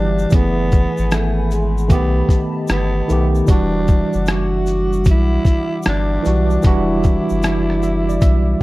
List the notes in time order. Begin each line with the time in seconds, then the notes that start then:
Already playing: G1 E3 G3 D4 G4 E5 F#5 D6
0.19 shaker
0.30 F#1 E3 A3 B3 F#5 G#5 B5, kick, closed hi-hat, shaker
0.34 B3 G#4
0.72 kick, closed hi-hat, shaker
0.97 G#1, shaker
1.11 A3, cross-stick, closed hi-hat, shaker
1.51 G#3, shaker
1.78 shaker
1.88 B1 D#3 A3 B3 G4 D#5 A5, kick, closed hi-hat, shaker
1.92 B3 G4
2.29 kick, closed hi-hat, shaker
2.68 G1, cross-stick, closed hi-hat, shaker
2.72 B3
3.08 B1 D#3 A3 B3, shaker
3.12 G4
3.35 shaker
3.46 E1 E3 G3 D4 E5 F#5 D6, kick, closed hi-hat, shaker
3.50 D4 F#4
3.88 kick, closed hi-hat, shaker
4.13 F#1, shaker
4.26 cross-stick, closed hi-hat, shaker
4.31 F#4
4.66 shaker
4.93 shaker
5.05 B1, kick, closed hi-hat, shaker
5.11 E4
5.45 kick, closed hi-hat, shaker
5.47 shaker
5.83 G1, cross-stick, closed hi-hat, shaker
5.89 D4
6.22 B1 E3 G3 D4, shaker
6.27 F#4
6.50 shaker
6.62 E1 E3 G3 D4 D5, kick, closed hi-hat, shaker
6.67 E4 F#4
7.04 kick, closed hi-hat, shaker
7.29 F#1, shaker
7.42 cross-stick, closed hi-hat, shaker
7.70 cross-stick
7.83 E5, shaker
8.09 D5, shaker
8.21 B1 E5, kick, closed hi-hat, shaker